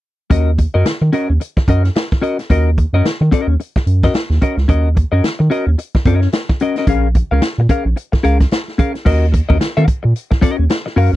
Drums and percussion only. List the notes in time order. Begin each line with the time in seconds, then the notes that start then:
0.31 kick, closed hi-hat
0.58 kick, closed hi-hat
0.86 snare, closed hi-hat
1.13 closed hi-hat
1.41 closed hi-hat
1.56 kick, snare
1.68 kick, closed hi-hat
1.84 snare, closed hi-hat
1.95 snare, closed hi-hat
2.12 kick, snare
2.23 closed hi-hat
2.39 snare, closed hi-hat
2.50 kick, closed hi-hat
2.78 kick, closed hi-hat
3.05 snare, closed hi-hat
3.32 kick, closed hi-hat
3.60 closed hi-hat
3.76 kick, snare
3.87 closed hi-hat
4.03 kick, snare, closed hi-hat
4.14 snare, closed hi-hat
4.31 snare
4.42 kick, closed hi-hat
4.58 snare
4.69 kick, closed hi-hat
4.97 kick, closed hi-hat
5.24 snare, closed hi-hat
5.51 closed hi-hat
5.78 closed hi-hat
5.95 kick, snare
6.05 kick, closed hi-hat
6.21 snare
6.32 snare, closed hi-hat
6.49 kick, snare
6.60 closed hi-hat
6.75 snare, closed hi-hat
6.87 kick, closed hi-hat
7.15 kick, closed hi-hat
7.42 snare, closed hi-hat
7.69 kick, closed hi-hat
7.97 closed hi-hat
8.13 kick, snare
8.24 closed hi-hat
8.40 kick, snare, closed hi-hat
8.51 snare, closed hi-hat
8.68 snare
8.79 kick, closed hi-hat
8.95 snare, closed hi-hat
9.06 kick, crash
9.34 kick, closed hi-hat
9.50 kick
9.61 snare, closed hi-hat
9.77 closed hi-hat
9.88 kick, closed hi-hat
10.16 closed hi-hat
10.32 kick, snare
10.42 kick, closed hi-hat
10.70 snare, closed hi-hat
10.86 snare
10.97 open hi-hat